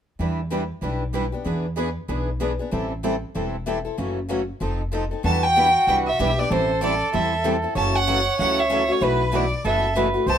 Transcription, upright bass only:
0.19 0.70 E2 medium
0.82 1.33 B1 medium
1.45 1.96 E2 medium
2.09 2.59 B1 medium
2.73 3.23 A1 medium
3.35 3.86 E1 medium
3.98 4.49 F#1 medium
4.61 5.11 F1 medium
5.24 5.74 E2 medium
5.87 6.14 C2 medium
6.19 6.46 B1 medium
6.50 7.01 A1 medium
7.14 7.64 E2 medium
7.75 8.26 F#1 medium
8.39 8.90 C#2 medium
9.01 9.52 B1 medium
9.65 10.15 F#1 medium
10.26 10.38 C2 medium

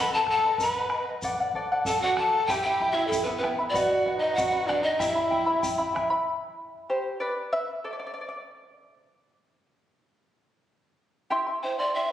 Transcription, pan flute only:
0.00 0.13 B5 loud
0.14 0.28 A5 medium
0.30 0.59 A5 loud
0.62 1.05 B5 medium
1.87 2.01 A5 medium
2.02 2.17 F#5 loud
2.18 2.48 A5 loud
2.47 2.62 G5 loud
2.62 2.93 G5 medium
2.91 3.09 E5 medium
3.07 3.23 A4 medium
3.23 3.29 B4 medium
3.38 3.46 B4 medium
3.70 4.16 D5 medium
4.19 4.36 D#5 medium
4.35 4.69 F#5 medium
4.67 4.84 D5 medium
4.83 5.01 D#5 medium
4.99 5.95 E5 medium
11.63 11.80 C5 medium
11.78 11.94 D5 medium
11.94 12.12 E5 medium

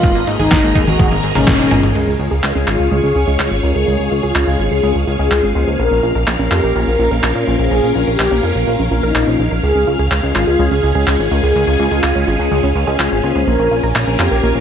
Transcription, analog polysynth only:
0.00 0.29 F4 loud
0.39 0.77 D#4 medium
0.87 1.06 F#4 medium
1.35 1.86 C#4 loud
1.95 2.24 G#4 medium
2.68 2.96 F4 medium
3.04 3.32 G#4 medium
3.76 4.13 G#4 medium
4.24 4.61 F4 medium
4.72 4.90 G#4 medium
5.20 5.70 G#4 medium
5.79 6.08 A#4 medium
6.51 6.80 G4 medium
6.88 7.16 A#4 medium
7.59 7.97 G#4 medium
8.07 8.45 G4 medium
8.55 8.74 F4 medium
9.03 9.54 D#4 medium
9.63 9.92 G#4 loud
10.35 10.64 F4 medium
10.71 11.00 G#4 medium
11.43 11.81 G#4 medium
11.92 12.29 F4 medium
12.40 12.58 G#4 medium
12.87 13.38 G#4 medium
13.47 13.76 A#4 loud
14.19 14.48 G4 medium
14.56 14.60 A#4 medium

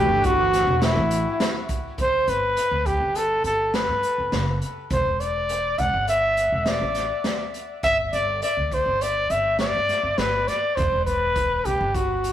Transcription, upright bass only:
0.09 0.63 G1 medium
0.67 0.94 E1 medium
0.97 1.24 A1 medium
1.98 2.25 G1 medium
2.28 2.55 G1 medium
2.71 2.98 D2 medium
3.00 3.41 G1 medium
3.44 3.85 G1 medium
3.88 4.02 G2 medium
4.18 4.32 G1 medium
4.32 4.59 F#1 medium
4.91 5.04 E1 medium
5.05 5.75 E1 medium
5.78 5.92 E1 medium
5.94 6.48 G1 medium
6.52 6.79 E1 medium
6.81 7.08 A1 medium
7.83 8.11 G1 medium
8.13 8.40 G1 medium
8.57 8.84 D2 medium
8.86 9.27 G1 medium
9.30 9.71 G1 medium
9.75 9.88 G2 medium
10.03 10.17 G1 medium
10.18 10.45 G1 medium
10.77 10.91 E1 medium
10.92 11.62 E1 medium
11.65 11.79 E1 medium
11.81 12.32 G1 medium

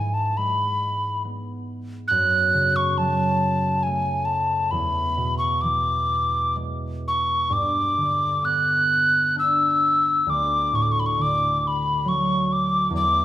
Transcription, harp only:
0.00 2.15 G#2 medium
0.00 2.15 E3 soft
0.00 0.68 C#4 soft
0.00 1.27 E4 soft
0.38 2.15 G#3 soft
1.25 4.35 B3 soft
2.11 4.78 F#2 medium
2.54 4.78 C#3 soft
2.98 4.78 F#3 soft
3.86 6.62 A3 soft
4.72 7.57 E2 medium
5.17 7.57 B2 soft
5.63 7.57 E3 soft
6.56 7.57 G#3 soft
7.50 10.32 G2 soft
7.97 10.32 D3 soft
8.42 11.53 B3 soft
9.35 12.15 D4 soft
10.27 12.96 D2 medium
10.72 11.23 A2 soft
11.18 12.96 D3 soft
12.05 12.96 F#3 soft
12.90 13.25 E2 medium

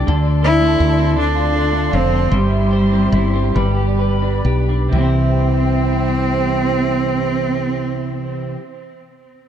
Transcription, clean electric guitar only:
0.00 0.14 G3 medium
0.00 0.97 D4 medium
0.00 0.14 G4 medium
0.07 1.15 D3 medium
0.07 0.42 A4 medium
0.43 1.15 A4 medium
0.61 1.71 A3 medium
0.98 2.11 C4 medium
1.16 2.39 D3 medium
1.16 1.53 A4 medium
1.35 1.90 F4 medium
1.54 2.31 A4 medium
1.72 2.31 A3 medium
1.92 2.39 F4 medium
2.12 2.39 C4 medium
2.31 3.54 G3 medium
2.31 2.70 C5 medium
2.50 3.12 E4 medium
2.71 3.54 C5 medium
2.92 3.32 C4 medium
3.13 3.64 E4 medium
3.34 3.63 C4 medium
3.55 4.95 G3 medium
3.55 3.98 B4 medium
3.77 4.45 G4 medium
3.99 5.02 B4 medium
4.22 4.68 D4 medium
4.46 5.01 G4 medium
4.69 4.98 D4 medium
4.89 8.54 C3 medium
4.89 8.58 E3 medium
4.96 8.61 G3 medium
4.96 8.64 C4 medium
5.01 8.67 E4 medium
5.01 8.70 C5 medium

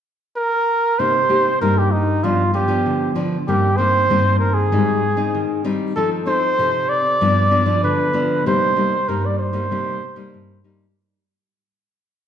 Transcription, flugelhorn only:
0.37 1.01 A#4 loud
0.99 1.61 C5 loud
1.61 1.80 A#4 medium
1.79 1.93 G4 medium
1.92 2.25 D#4 medium
2.24 2.54 F4 medium
2.54 3.12 G4 medium
3.48 3.79 G4 medium
3.78 4.39 C5 loud
4.40 4.55 A#4 medium
4.54 5.64 G#4 medium
5.96 6.10 A4 medium
6.27 6.91 C5 loud
6.89 7.83 D5 medium
7.84 8.42 B4 medium
8.47 9.10 C5 medium
9.09 9.27 A#4 medium
9.26 9.38 D5 medium
9.39 10.60 C5 medium

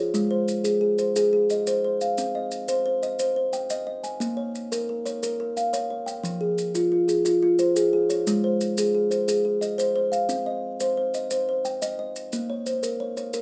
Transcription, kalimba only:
0.00 0.31 G#4 medium
0.00 0.31 C#5 medium
0.14 0.48 G#3 medium
0.31 0.82 C5 medium
0.64 0.80 G#4 medium
0.81 1.15 G#4 medium
0.98 1.50 C5 medium
1.16 1.32 G#4 medium
1.33 1.84 G#4 medium
1.51 2.01 D#5 medium
1.67 1.83 C5 medium
1.84 2.35 C5 medium
2.01 2.35 F5 medium
2.18 2.52 C4 medium
2.35 2.86 D#5 medium
2.68 2.84 C5 medium
2.86 3.18 C5 medium
3.03 3.53 D#5 medium
3.19 3.35 C5 medium
3.36 3.87 C5 medium
3.53 4.04 G5 medium
3.70 3.86 D#5 medium
3.87 4.38 D#5 medium
4.04 4.38 G#5 medium
4.20 4.54 A#3 medium
4.37 4.88 C#5 medium
4.72 4.88 A#4 medium
4.89 5.22 A#4 medium
5.06 5.56 C#5 medium
5.23 5.39 A#4 medium
5.40 5.90 A#4 medium
5.57 6.07 F5 medium
5.73 5.89 C#5 medium
5.90 6.41 C#5 medium
6.06 6.41 G5 medium
6.24 6.58 F3 medium
6.41 6.91 G#4 medium
6.75 6.91 F4 medium
6.92 7.24 F4 medium
7.08 7.59 G#4 medium
7.25 7.41 F4 medium
7.43 7.93 F4 medium
7.59 8.10 C5 medium
7.76 7.92 G#4 medium
7.93 8.44 G#4 medium
8.10 8.44 C#5 medium
8.27 8.61 G#3 loud
8.44 8.95 C5 medium
8.78 8.93 G#4 medium
8.95 9.27 G#4 medium
9.11 9.62 C5 medium
9.28 9.44 G#4 medium
9.45 9.96 G#4 medium
9.61 10.12 D#5 medium
9.78 9.94 C5 medium
9.96 10.46 C5 medium
10.12 10.46 F5 medium
10.29 10.63 C4 loud
10.46 10.97 D#5 medium
10.81 10.96 C5 medium
10.97 11.30 C5 medium
11.15 11.65 D#5 medium
11.31 11.48 C5 medium
11.49 11.99 C5 medium
11.65 12.15 G5 medium
11.82 11.98 D#5 medium
11.99 12.49 D#5 medium
12.33 12.66 A#3 medium
12.50 12.99 C#5 medium
12.66 13.17 C5 medium
12.83 13.17 A#4 medium
13.00 13.16 C#5 medium
13.17 13.42 C#5 medium
13.34 13.42 A#4 medium

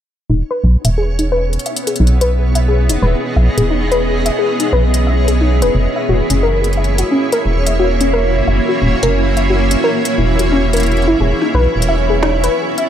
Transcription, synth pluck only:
0.30 0.45 D#4 medium
0.51 0.60 B4 loud
0.85 0.94 E5 medium
0.98 1.18 G#4 medium
1.19 1.29 D#4 medium
1.32 1.48 B4 loud
1.66 1.82 E5 medium
1.87 1.99 G#4 medium
2.00 2.16 D#4 medium
2.21 2.31 B4 medium
2.55 2.65 E5 medium
2.68 2.88 G#4 medium
2.89 2.99 D#4 medium
3.02 3.18 B4 loud
3.36 3.52 E5 medium
3.58 3.70 G#4 medium
3.71 3.86 D#4 medium
3.92 4.01 B4 loud
4.26 4.35 E5 medium
4.39 4.59 G#4 medium
4.60 4.69 D#4 medium
4.73 4.89 B4 loud
5.07 5.23 E5 medium
5.28 5.40 G#4 medium
5.41 5.57 D#4 medium
5.62 5.72 B4 medium
5.96 6.06 E5 medium
6.09 6.29 F#4 medium
6.30 6.40 C#4 medium
6.43 6.59 A#4 medium
6.77 6.93 E5 medium
6.98 7.11 F#4 medium
7.11 7.27 C#4 medium
7.33 7.42 A#4 loud
7.67 7.76 E5 medium
7.80 8.00 F#4 medium
8.01 8.10 C#4 medium
8.13 8.29 A#4 loud
8.48 8.63 E5 medium
8.69 8.81 F#4 medium
8.82 8.98 C#4 medium
9.03 9.13 A#4 loud
9.37 9.47 E5 medium
9.50 9.70 F#4 medium
9.71 9.81 C#4 medium
9.84 10.00 A#4 loud
10.18 10.38 E4 medium
10.39 10.45 F#4 medium
10.52 10.68 C#4 medium
10.74 10.86 A#4 medium
11.08 11.17 E4 medium
11.20 11.41 G#4 medium
11.42 11.51 D#4 medium
11.55 11.70 B4 loud
11.89 12.04 E5 medium
12.10 12.22 G#4 medium
12.23 12.38 D#4 medium
12.44 12.53 B4 loud
12.78 12.88 E5 medium

